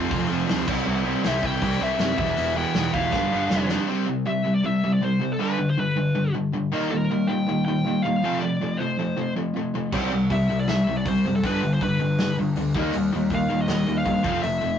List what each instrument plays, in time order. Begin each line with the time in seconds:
0.08 picked electric bass F1, overdriven electric guitar F2 C3, distorted electric guitar F3 A3 C4 F4, kick, open hi-hat
0.27 picked electric bass F1, overdriven electric guitar F2 C3, distorted electric guitar F3 A3 C4 F4
0.47 picked electric bass D2, overdriven electric guitar F2 C3, distorted electric guitar F3 A3 C4 F4, snare, open hi-hat
0.65 picked electric bass C2, distorted electric guitar C3 E3 G3 C4 E4, kick, crash
0.85 picked electric bass C2, distorted electric guitar C3 E3 G3 C4 E4
1.03 distorted electric guitar C3 E3 G3 C4 E4
1.22 picked electric bass C2, distorted electric guitar C3 E3 G3 C4 E4, snare, open hi-hat
1.27 lead electric guitar E5
1.42 picked electric bass C2, distorted electric guitar C3 E3 G3 C4 E4, lead electric guitar G5, kick
1.61 picked electric bass C2, distorted electric guitar C3 E3 G3 C4 E4, lead electric guitar G5, kick, open hi-hat
1.80 picked electric bass C2, distorted electric guitar C3 E3 G3 C4 E4, lead electric guitar E5
1.99 picked electric bass F#2, distorted electric guitar C3 E3 G3 C4 E4, snare, open hi-hat
2.18 picked electric bass E1, overdriven electric guitar E2 B2, distorted electric guitar E3 G3 B3 E4, lead electric guitar E5, kick
2.37 picked electric bass E1, overdriven electric guitar E2 B2, distorted electric guitar E3 G3 B3 E4, open hi-hat
2.56 overdriven electric guitar E2 B2, distorted electric guitar E3 G3 B3 E4, lead electric guitar G5
2.74 picked electric bass E1, overdriven electric guitar E2 B2, distorted electric guitar E3 G3 B3 E4, snare, open hi-hat
2.94 picked electric bass E1, overdriven electric guitar E2 B2, distorted electric guitar E3 G3 B3 E4, lead electric guitar F5, kick
3.12 picked electric bass G1, distorted electric guitar G2 D3 G3 B3 D4, kick, snare
3.31 picked electric bass G1, distorted electric guitar G2 D3 G3 B3 D4
3.49 picked electric bass F1, distorted electric guitar G2 D3 G3 B3 D4, snare
3.67 distorted electric guitar G2 D3 G3 B3 D4, snare
3.88 distorted electric guitar C3 G3 C4
4.06 distorted electric guitar C3 G3
4.26 distorted electric guitar C3 G3, lead electric guitar E5
4.44 distorted electric guitar C3 G3
4.55 lead electric guitar D5
4.64 distorted electric guitar C3 G3, lead electric guitar E5
4.84 distorted electric guitar C3 G3
4.93 lead electric guitar D5
5.02 distorted electric guitar C3 G3, lead electric guitar C5
5.21 distorted electric guitar C3 G3
5.33 lead electric guitar A4
5.39 distorted electric guitar G2 D3 G3, lead electric guitar B4
5.58 distorted electric guitar G2 D3
5.70 lead electric guitar C5
5.77 distorted electric guitar G2 D3, lead electric guitar B4
5.96 distorted electric guitar G2 D3
6.15 distorted electric guitar G2 D3
6.34 distorted electric guitar G2 D3
6.53 distorted electric guitar G2 D3
6.72 distorted electric guitar D#3 G3 A#3, overdriven electric guitar D#4
6.91 distorted electric guitar D#3 G3, overdriven electric guitar A#3, lead electric guitar A#4
7.10 distorted electric guitar D#3 G3, overdriven electric guitar A#3
7.27 distorted electric guitar D#3 G3, overdriven electric guitar A#3, lead electric guitar G5
7.47 distorted electric guitar D#3 G3, overdriven electric guitar A#3
7.65 distorted electric guitar D#3 G3, overdriven electric guitar A#3, lead electric guitar G5
7.84 distorted electric guitar D#3 G3, overdriven electric guitar A#3
8.02 distorted electric guitar D#3 G3, overdriven electric guitar A#3, lead electric guitar F5
8.22 overdriven electric guitar F2 C3, distorted electric guitar F3 A3 C4
8.40 overdriven electric guitar F2 C3, distorted electric guitar F3 A3, lead electric guitar D5
8.61 overdriven electric guitar F2 C3, distorted electric guitar F3 A3
8.78 overdriven electric guitar F2 C3, distorted electric guitar F3 A3, lead electric guitar C5
8.98 overdriven electric guitar F2 C3, distorted electric guitar F3 A3
9.16 overdriven electric guitar F2 C3, distorted electric guitar F3 A3
9.36 overdriven electric guitar F2 C3, distorted electric guitar F3 A3
9.54 overdriven electric guitar F2 C3, distorted electric guitar F3 A3
9.74 overdriven electric guitar F2 C3, distorted electric guitar F3 A3
9.92 picked electric bass C2, distorted electric guitar C3 G3 C4, kick, crash
10.12 picked electric bass C2, distorted electric guitar C3 G3
10.30 picked electric bass C2, distorted electric guitar C3 G3, lead electric guitar E5, kick, open hi-hat
10.49 picked electric bass C2, distorted electric guitar C3 G3
10.60 lead electric guitar D5
10.68 picked electric bass C2, distorted electric guitar C3 G3, lead electric guitar E5, snare, open hi-hat
10.87 picked electric bass C2, distorted electric guitar C3 G3
10.97 lead electric guitar D5
11.05 picked electric bass C2, distorted electric guitar C3 G3, lead electric guitar C5, kick, open hi-hat
11.24 picked electric bass F#1, distorted electric guitar C3 G3
11.36 lead electric guitar A4
11.44 picked electric bass G1, distorted electric guitar G2 D3 G3, lead electric guitar B4, kick, open hi-hat
11.62 picked electric bass G1, distorted electric guitar G2 D3
11.74 lead electric guitar C5
11.81 picked electric bass G1, distorted electric guitar G2 D3, lead electric guitar B4, kick, open hi-hat
11.99 picked electric bass G1, distorted electric guitar G2 D3
12.18 picked electric bass G1, distorted electric guitar G2 D3, snare, open hi-hat
12.38 picked electric bass G1, distorted electric guitar G2 D3
12.56 picked electric bass D2, distorted electric guitar G2 D3, open hi-hat
12.74 picked electric bass D#2, distorted electric guitar D#3 G3 A#3, overdriven electric guitar D#4, kick
12.93 picked electric bass D#2, distorted electric guitar D#3 G3, overdriven electric guitar A#3, open hi-hat
13.13 picked electric bass D#2, distorted electric guitar D#3 G3, overdriven electric guitar A#3
13.30 picked electric bass D#2, distorted electric guitar D#3 G3, overdriven electric guitar A#3, kick, open hi-hat
13.35 lead electric guitar F5
13.49 picked electric bass D#2, distorted electric guitar D#3 G3, overdriven electric guitar A#3
13.62 lead electric guitar D#5
13.68 picked electric bass D#2, distorted electric guitar D#3 G3, overdriven electric guitar A#3, snare, open hi-hat
13.86 picked electric bass D#2, distorted electric guitar D#3 G3, overdriven electric guitar A#3
13.98 lead electric guitar F5
14.05 picked electric bass G2, distorted electric guitar D#3 G3, overdriven electric guitar A#3, kick, open hi-hat
14.23 picked electric bass F1, overdriven electric guitar F2 C3, distorted electric guitar F3 A3 C4, kick
14.42 picked electric bass F1, overdriven electric guitar F2 C3, distorted electric guitar F3 A3, lead electric guitar E5, open hi-hat
14.61 picked electric bass F1, overdriven electric guitar F2 C3, distorted electric guitar F3 A3